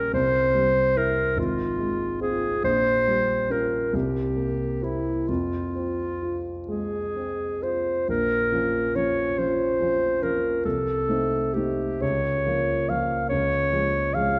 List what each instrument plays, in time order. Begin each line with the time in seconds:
Already playing: grand piano A#1 G3 C#4 G4, clarinet A#4
0.13 grand piano C2, clarinet C5
0.54 grand piano G3
0.96 grand piano C4 E4, clarinet A#4
1.37 grand piano G#1, clarinet F4
1.78 grand piano G#3
2.21 grand piano C4 F4, clarinet G#4
2.63 grand piano A#1, clarinet C5
3.07 grand piano G3
3.50 grand piano C#4 F4, clarinet A#4
3.93 grand piano C2, clarinet G4
4.37 grand piano A#3
4.82 grand piano C4 E4, clarinet E4
5.28 grand piano F2, clarinet F4
5.75 grand piano C4
6.23 grand piano F4
6.68 grand piano G#3, clarinet G#4
7.16 grand piano C4
7.63 grand piano F4, clarinet C5
8.08 grand piano A#1, clarinet A#4
8.52 grand piano F3 C#4 F4
8.95 grand piano F3 C#4 F4, clarinet C#5
9.37 grand piano F3 C#4 F4, clarinet C5
9.81 grand piano F3 C#4 F4
10.22 grand piano F3 C#4 F4, clarinet A#4
10.65 grand piano C2, clarinet A4
11.09 grand piano A3 C4 D#4
11.54 grand piano A3 C4 D#4, clarinet G4
12.02 grand piano C#2, clarinet C#5
12.46 grand piano F3 A#3 F4
12.89 grand piano F3 A#3 F4, clarinet F5
13.29 grand piano C#2, clarinet C#5
13.72 grand piano F3 G#3 G#4
14.14 grand piano F3 G#3 G#4, clarinet F5